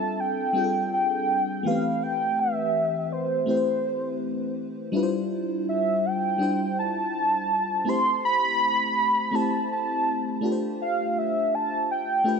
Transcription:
Already playing: fm electric piano G3 C4 D4 F4 A4, soft synth lead A5
0.20 soft synth lead G5
0.53 fm electric piano G3 C4 D4 F4
0.58 fm electric piano G#4
0.64 fm electric piano A4
0.93 soft synth lead G5
1.63 fm electric piano E3 A3 B3 G4, soft synth lead F5
1.68 fm electric piano C4 B4
2.03 soft synth lead G5
2.39 soft synth lead E5
3.12 soft synth lead C5
3.46 fm electric piano A3 C4 E4 G4, soft synth lead C5
3.50 fm electric piano B4
3.57 fm electric piano C5
4.92 fm electric piano G3 D4 E4 F4
4.96 fm electric piano B4
5.03 fm electric piano C5
5.69 soft synth lead E5
6.05 soft synth lead G5
6.38 fm electric piano G3 D4 E4 F4
6.43 fm electric piano C5
6.79 soft synth lead A5
7.85 fm electric piano A3 C4 E4 G4, soft synth lead C6
7.89 fm electric piano C5
8.25 soft synth lead B5
9.31 fm electric piano A3 C4 E4 G4, soft synth lead A5
9.36 fm electric piano C5
9.72 soft synth lead A5
10.41 fm electric piano A3 D4 F4 G4
10.46 fm electric piano B4
10.52 fm electric piano C5
10.81 soft synth lead F5
11.18 soft synth lead E5
11.55 soft synth lead A5
11.91 soft synth lead G5
12.24 fm electric piano A3 D4 F4 G4
12.28 fm electric piano B4

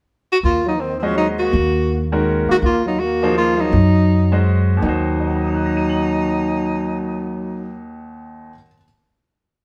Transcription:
0.32 tenor saxophone F#4
0.43 upright bass D#2, trombone A#3, tenor saxophone F4
0.66 trombone F#3, tenor saxophone D#4
0.79 trombone D#3, tenor saxophone C4
0.98 trombone D#3, tenor saxophone C4
1.02 trombone F3, grand piano G#3 C#4 F#4 C5 D#5, tenor saxophone C#4
1.16 trombone F#3, tenor saxophone D#4
1.39 trombone A#3, tenor saxophone F#4
1.53 upright bass D#2
2.12 grand piano D#3 G#3 C#4 F#4 A#4
2.49 trombone A#3, tenor saxophone F#4, muted upright bass stroke
2.62 upright bass D#2, trombone A#3, tenor saxophone F4
2.86 trombone F#3, tenor saxophone D#4
3.00 trombone A#3, tenor saxophone F#4
3.22 grand piano F3 A#3 D#4 G#4 C5
3.37 trombone A#3, tenor saxophone F4
3.60 trombone F#3, tenor saxophone D#4
3.73 upright bass F#2
4.32 grand piano G#3 C#4 F#4 C5 D#5
4.77 grand piano D#2 D#3
4.82 upright bass D#2, trombone F#3, grand piano D#4 F#4, tenor saxophone D#4
4.88 grand piano C5
5.20 grand piano D#5
5.27 grand piano F#5
5.36 grand piano A#5
5.45 grand piano D#6
5.55 grand piano F#6
5.66 grand piano A#6
5.77 grand piano D#7
5.90 grand piano F#7

